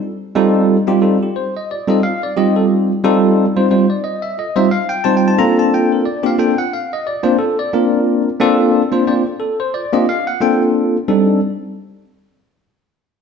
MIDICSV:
0, 0, Header, 1, 2, 480
1, 0, Start_track
1, 0, Tempo, 671141
1, 248, Time_signature, 4, 2, 24, 8
1, 9452, End_track
2, 0, Start_track
2, 0, Title_t, "Tine electric piano"
2, 0, Program_c, 0, 4
2, 14, Note_on_c, 0, 63, 31
2, 17, Note_on_c, 0, 65, 36
2, 75, Note_off_c, 0, 63, 0
2, 76, Note_off_c, 0, 65, 0
2, 252, Note_on_c, 0, 55, 104
2, 252, Note_on_c, 0, 60, 89
2, 253, Note_on_c, 0, 65, 80
2, 256, Note_on_c, 0, 63, 101
2, 258, Note_on_c, 0, 69, 102
2, 543, Note_off_c, 0, 55, 0
2, 543, Note_off_c, 0, 60, 0
2, 543, Note_off_c, 0, 65, 0
2, 544, Note_off_c, 0, 63, 0
2, 546, Note_off_c, 0, 69, 0
2, 623, Note_on_c, 0, 60, 73
2, 624, Note_on_c, 0, 55, 81
2, 625, Note_on_c, 0, 63, 74
2, 628, Note_on_c, 0, 65, 77
2, 628, Note_on_c, 0, 67, 92
2, 707, Note_off_c, 0, 60, 0
2, 708, Note_off_c, 0, 55, 0
2, 708, Note_off_c, 0, 63, 0
2, 710, Note_off_c, 0, 65, 0
2, 710, Note_off_c, 0, 67, 0
2, 723, Note_on_c, 0, 55, 66
2, 727, Note_on_c, 0, 60, 56
2, 728, Note_on_c, 0, 63, 59
2, 728, Note_on_c, 0, 69, 70
2, 730, Note_on_c, 0, 65, 60
2, 831, Note_off_c, 0, 55, 0
2, 834, Note_off_c, 0, 60, 0
2, 834, Note_off_c, 0, 63, 0
2, 834, Note_off_c, 0, 69, 0
2, 835, Note_off_c, 0, 65, 0
2, 859, Note_on_c, 0, 65, 27
2, 864, Note_on_c, 0, 69, 30
2, 877, Note_on_c, 0, 67, 63
2, 911, Note_off_c, 0, 65, 0
2, 913, Note_off_c, 0, 69, 0
2, 973, Note_off_c, 0, 67, 0
2, 973, Note_on_c, 0, 72, 68
2, 1099, Note_off_c, 0, 72, 0
2, 1120, Note_on_c, 0, 75, 73
2, 1214, Note_off_c, 0, 75, 0
2, 1214, Note_on_c, 0, 65, 26
2, 1218, Note_on_c, 0, 67, 31
2, 1224, Note_on_c, 0, 74, 75
2, 1274, Note_off_c, 0, 65, 0
2, 1277, Note_off_c, 0, 67, 0
2, 1342, Note_on_c, 0, 55, 79
2, 1342, Note_on_c, 0, 60, 81
2, 1344, Note_on_c, 0, 63, 79
2, 1345, Note_off_c, 0, 74, 0
2, 1345, Note_on_c, 0, 69, 82
2, 1347, Note_on_c, 0, 65, 73
2, 1357, Note_on_c, 0, 75, 69
2, 1426, Note_off_c, 0, 60, 0
2, 1427, Note_off_c, 0, 55, 0
2, 1427, Note_off_c, 0, 63, 0
2, 1428, Note_off_c, 0, 69, 0
2, 1429, Note_off_c, 0, 65, 0
2, 1450, Note_on_c, 0, 65, 25
2, 1453, Note_off_c, 0, 75, 0
2, 1454, Note_on_c, 0, 77, 102
2, 1455, Note_on_c, 0, 72, 29
2, 1513, Note_off_c, 0, 65, 0
2, 1515, Note_off_c, 0, 72, 0
2, 1580, Note_off_c, 0, 77, 0
2, 1597, Note_on_c, 0, 74, 78
2, 1692, Note_on_c, 0, 60, 67
2, 1692, Note_on_c, 0, 63, 64
2, 1693, Note_off_c, 0, 74, 0
2, 1693, Note_on_c, 0, 55, 71
2, 1694, Note_on_c, 0, 67, 81
2, 1697, Note_on_c, 0, 65, 66
2, 1699, Note_on_c, 0, 75, 90
2, 1822, Note_off_c, 0, 75, 0
2, 1833, Note_on_c, 0, 69, 78
2, 1894, Note_off_c, 0, 69, 0
2, 2083, Note_off_c, 0, 60, 0
2, 2084, Note_off_c, 0, 55, 0
2, 2084, Note_off_c, 0, 63, 0
2, 2084, Note_off_c, 0, 67, 0
2, 2086, Note_off_c, 0, 65, 0
2, 2174, Note_on_c, 0, 55, 102
2, 2175, Note_on_c, 0, 60, 82
2, 2177, Note_on_c, 0, 65, 88
2, 2178, Note_on_c, 0, 63, 99
2, 2178, Note_on_c, 0, 69, 107
2, 2463, Note_off_c, 0, 55, 0
2, 2464, Note_off_c, 0, 60, 0
2, 2465, Note_off_c, 0, 63, 0
2, 2465, Note_off_c, 0, 65, 0
2, 2465, Note_off_c, 0, 69, 0
2, 2548, Note_on_c, 0, 55, 68
2, 2549, Note_on_c, 0, 63, 64
2, 2549, Note_on_c, 0, 65, 68
2, 2550, Note_on_c, 0, 60, 62
2, 2551, Note_on_c, 0, 72, 83
2, 2629, Note_off_c, 0, 55, 0
2, 2630, Note_off_c, 0, 63, 0
2, 2630, Note_off_c, 0, 65, 0
2, 2631, Note_off_c, 0, 60, 0
2, 2631, Note_off_c, 0, 72, 0
2, 2650, Note_on_c, 0, 55, 67
2, 2650, Note_on_c, 0, 60, 56
2, 2653, Note_on_c, 0, 72, 68
2, 2655, Note_on_c, 0, 63, 54
2, 2655, Note_on_c, 0, 65, 59
2, 2754, Note_off_c, 0, 55, 0
2, 2755, Note_off_c, 0, 60, 0
2, 2756, Note_off_c, 0, 72, 0
2, 2757, Note_off_c, 0, 63, 0
2, 2757, Note_off_c, 0, 65, 0
2, 2781, Note_on_c, 0, 65, 22
2, 2787, Note_on_c, 0, 72, 28
2, 2788, Note_on_c, 0, 74, 67
2, 2832, Note_off_c, 0, 65, 0
2, 2835, Note_off_c, 0, 72, 0
2, 2888, Note_off_c, 0, 74, 0
2, 2889, Note_on_c, 0, 75, 75
2, 3017, Note_off_c, 0, 75, 0
2, 3021, Note_on_c, 0, 76, 75
2, 3124, Note_off_c, 0, 76, 0
2, 3129, Note_on_c, 0, 65, 27
2, 3136, Note_on_c, 0, 69, 29
2, 3140, Note_on_c, 0, 75, 86
2, 3192, Note_off_c, 0, 65, 0
2, 3195, Note_off_c, 0, 69, 0
2, 3260, Note_on_c, 0, 55, 85
2, 3261, Note_on_c, 0, 72, 83
2, 3262, Note_off_c, 0, 75, 0
2, 3262, Note_on_c, 0, 60, 74
2, 3262, Note_on_c, 0, 65, 81
2, 3263, Note_on_c, 0, 63, 85
2, 3264, Note_on_c, 0, 76, 79
2, 3345, Note_off_c, 0, 55, 0
2, 3346, Note_off_c, 0, 60, 0
2, 3346, Note_off_c, 0, 65, 0
2, 3346, Note_off_c, 0, 72, 0
2, 3347, Note_off_c, 0, 63, 0
2, 3366, Note_off_c, 0, 76, 0
2, 3367, Note_on_c, 0, 65, 25
2, 3372, Note_on_c, 0, 67, 25
2, 3372, Note_on_c, 0, 77, 101
2, 3431, Note_off_c, 0, 65, 0
2, 3433, Note_off_c, 0, 67, 0
2, 3498, Note_off_c, 0, 77, 0
2, 3498, Note_on_c, 0, 79, 94
2, 3603, Note_off_c, 0, 79, 0
2, 3605, Note_on_c, 0, 81, 92
2, 3610, Note_on_c, 0, 55, 68
2, 3610, Note_on_c, 0, 60, 69
2, 3611, Note_on_c, 0, 65, 64
2, 3612, Note_on_c, 0, 63, 70
2, 3613, Note_on_c, 0, 72, 87
2, 3683, Note_off_c, 0, 81, 0
2, 3698, Note_on_c, 0, 79, 82
2, 3770, Note_off_c, 0, 79, 0
2, 3774, Note_on_c, 0, 81, 84
2, 3840, Note_off_c, 0, 60, 0
2, 3844, Note_off_c, 0, 65, 0
2, 3848, Note_off_c, 0, 55, 0
2, 3848, Note_off_c, 0, 81, 0
2, 3848, Note_on_c, 0, 60, 72
2, 3849, Note_off_c, 0, 63, 0
2, 3850, Note_off_c, 0, 72, 0
2, 3851, Note_on_c, 0, 58, 76
2, 3851, Note_on_c, 0, 62, 71
2, 3852, Note_on_c, 0, 69, 92
2, 3852, Note_on_c, 0, 82, 106
2, 3853, Note_on_c, 0, 65, 76
2, 3978, Note_off_c, 0, 82, 0
2, 3999, Note_on_c, 0, 81, 86
2, 4093, Note_off_c, 0, 81, 0
2, 4107, Note_on_c, 0, 79, 84
2, 4226, Note_off_c, 0, 79, 0
2, 4237, Note_on_c, 0, 70, 58
2, 4327, Note_off_c, 0, 60, 0
2, 4328, Note_off_c, 0, 58, 0
2, 4328, Note_off_c, 0, 62, 0
2, 4329, Note_off_c, 0, 65, 0
2, 4329, Note_off_c, 0, 69, 0
2, 4330, Note_on_c, 0, 74, 84
2, 4332, Note_off_c, 0, 70, 0
2, 4456, Note_on_c, 0, 58, 66
2, 4456, Note_on_c, 0, 60, 68
2, 4457, Note_off_c, 0, 74, 0
2, 4458, Note_on_c, 0, 62, 67
2, 4459, Note_on_c, 0, 65, 66
2, 4459, Note_on_c, 0, 67, 89
2, 4478, Note_on_c, 0, 77, 75
2, 4543, Note_off_c, 0, 58, 0
2, 4543, Note_off_c, 0, 60, 0
2, 4544, Note_off_c, 0, 62, 0
2, 4545, Note_off_c, 0, 65, 0
2, 4545, Note_off_c, 0, 67, 0
2, 4564, Note_on_c, 0, 58, 66
2, 4566, Note_on_c, 0, 62, 55
2, 4566, Note_on_c, 0, 65, 61
2, 4567, Note_on_c, 0, 60, 62
2, 4568, Note_on_c, 0, 69, 75
2, 4573, Note_off_c, 0, 77, 0
2, 4573, Note_on_c, 0, 79, 82
2, 4671, Note_off_c, 0, 58, 0
2, 4672, Note_off_c, 0, 62, 0
2, 4672, Note_off_c, 0, 65, 0
2, 4673, Note_off_c, 0, 60, 0
2, 4673, Note_off_c, 0, 69, 0
2, 4696, Note_on_c, 0, 65, 27
2, 4698, Note_off_c, 0, 79, 0
2, 4702, Note_on_c, 0, 72, 30
2, 4708, Note_on_c, 0, 78, 87
2, 4749, Note_off_c, 0, 65, 0
2, 4752, Note_off_c, 0, 72, 0
2, 4808, Note_off_c, 0, 78, 0
2, 4817, Note_on_c, 0, 77, 78
2, 4940, Note_off_c, 0, 77, 0
2, 4957, Note_on_c, 0, 75, 86
2, 5050, Note_on_c, 0, 65, 25
2, 5052, Note_off_c, 0, 75, 0
2, 5053, Note_on_c, 0, 67, 31
2, 5055, Note_on_c, 0, 74, 86
2, 5112, Note_off_c, 0, 65, 0
2, 5114, Note_off_c, 0, 67, 0
2, 5172, Note_on_c, 0, 60, 81
2, 5174, Note_on_c, 0, 58, 91
2, 5174, Note_on_c, 0, 62, 82
2, 5174, Note_on_c, 0, 65, 73
2, 5175, Note_on_c, 0, 72, 88
2, 5179, Note_off_c, 0, 74, 0
2, 5261, Note_off_c, 0, 60, 0
2, 5262, Note_off_c, 0, 58, 0
2, 5262, Note_off_c, 0, 62, 0
2, 5262, Note_off_c, 0, 65, 0
2, 5262, Note_off_c, 0, 72, 0
2, 5283, Note_on_c, 0, 69, 92
2, 5288, Note_on_c, 0, 65, 25
2, 5351, Note_off_c, 0, 65, 0
2, 5413, Note_off_c, 0, 69, 0
2, 5429, Note_on_c, 0, 74, 85
2, 5529, Note_on_c, 0, 60, 74
2, 5530, Note_on_c, 0, 62, 71
2, 5531, Note_on_c, 0, 58, 77
2, 5532, Note_on_c, 0, 65, 70
2, 5535, Note_on_c, 0, 70, 79
2, 5875, Note_off_c, 0, 74, 0
2, 5921, Note_off_c, 0, 60, 0
2, 5922, Note_off_c, 0, 58, 0
2, 5922, Note_off_c, 0, 62, 0
2, 5923, Note_off_c, 0, 65, 0
2, 5924, Note_off_c, 0, 70, 0
2, 6008, Note_on_c, 0, 60, 94
2, 6010, Note_on_c, 0, 58, 117
2, 6010, Note_on_c, 0, 62, 98
2, 6013, Note_on_c, 0, 65, 96
2, 6014, Note_on_c, 0, 69, 127
2, 6299, Note_off_c, 0, 60, 0
2, 6300, Note_off_c, 0, 58, 0
2, 6301, Note_off_c, 0, 62, 0
2, 6302, Note_off_c, 0, 65, 0
2, 6302, Note_off_c, 0, 69, 0
2, 6378, Note_on_c, 0, 58, 72
2, 6378, Note_on_c, 0, 60, 69
2, 6378, Note_on_c, 0, 62, 67
2, 6380, Note_on_c, 0, 65, 72
2, 6383, Note_on_c, 0, 72, 80
2, 6464, Note_off_c, 0, 58, 0
2, 6464, Note_off_c, 0, 60, 0
2, 6464, Note_off_c, 0, 62, 0
2, 6465, Note_off_c, 0, 65, 0
2, 6466, Note_off_c, 0, 72, 0
2, 6487, Note_on_c, 0, 58, 60
2, 6488, Note_on_c, 0, 65, 54
2, 6489, Note_on_c, 0, 60, 69
2, 6490, Note_on_c, 0, 62, 55
2, 6491, Note_on_c, 0, 72, 69
2, 6496, Note_on_c, 0, 74, 78
2, 6592, Note_off_c, 0, 58, 0
2, 6593, Note_off_c, 0, 65, 0
2, 6594, Note_off_c, 0, 60, 0
2, 6594, Note_off_c, 0, 62, 0
2, 6594, Note_off_c, 0, 72, 0
2, 6620, Note_off_c, 0, 74, 0
2, 6626, Note_on_c, 0, 65, 28
2, 6627, Note_on_c, 0, 69, 30
2, 6674, Note_off_c, 0, 65, 0
2, 6674, Note_off_c, 0, 69, 0
2, 6721, Note_on_c, 0, 69, 77
2, 6852, Note_off_c, 0, 69, 0
2, 6865, Note_on_c, 0, 72, 83
2, 6966, Note_off_c, 0, 72, 0
2, 6966, Note_on_c, 0, 74, 88
2, 6977, Note_on_c, 0, 65, 30
2, 6977, Note_on_c, 0, 72, 28
2, 7035, Note_off_c, 0, 65, 0
2, 7035, Note_off_c, 0, 72, 0
2, 7095, Note_off_c, 0, 74, 0
2, 7100, Note_on_c, 0, 58, 88
2, 7100, Note_on_c, 0, 62, 77
2, 7102, Note_on_c, 0, 60, 83
2, 7102, Note_on_c, 0, 65, 81
2, 7103, Note_on_c, 0, 67, 92
2, 7106, Note_on_c, 0, 75, 80
2, 7185, Note_off_c, 0, 58, 0
2, 7185, Note_off_c, 0, 62, 0
2, 7186, Note_off_c, 0, 60, 0
2, 7186, Note_off_c, 0, 65, 0
2, 7186, Note_off_c, 0, 67, 0
2, 7204, Note_on_c, 0, 65, 27
2, 7206, Note_off_c, 0, 75, 0
2, 7210, Note_on_c, 0, 69, 28
2, 7216, Note_on_c, 0, 77, 105
2, 7269, Note_off_c, 0, 65, 0
2, 7272, Note_off_c, 0, 69, 0
2, 7340, Note_off_c, 0, 77, 0
2, 7347, Note_on_c, 0, 78, 90
2, 7442, Note_on_c, 0, 58, 74
2, 7442, Note_on_c, 0, 60, 69
2, 7443, Note_on_c, 0, 62, 64
2, 7446, Note_on_c, 0, 65, 78
2, 7447, Note_off_c, 0, 78, 0
2, 7448, Note_on_c, 0, 69, 88
2, 7451, Note_on_c, 0, 79, 82
2, 7593, Note_off_c, 0, 79, 0
2, 7838, Note_off_c, 0, 58, 0
2, 7838, Note_off_c, 0, 60, 0
2, 7838, Note_off_c, 0, 62, 0
2, 7840, Note_off_c, 0, 65, 0
2, 7841, Note_off_c, 0, 69, 0
2, 7926, Note_on_c, 0, 55, 79
2, 7926, Note_on_c, 0, 63, 64
2, 7927, Note_on_c, 0, 69, 81
2, 7928, Note_on_c, 0, 60, 69
2, 7928, Note_on_c, 0, 62, 62
2, 8149, Note_off_c, 0, 55, 0
2, 8149, Note_off_c, 0, 63, 0
2, 8150, Note_off_c, 0, 60, 0
2, 8150, Note_off_c, 0, 62, 0
2, 8150, Note_off_c, 0, 69, 0
2, 9452, End_track
0, 0, End_of_file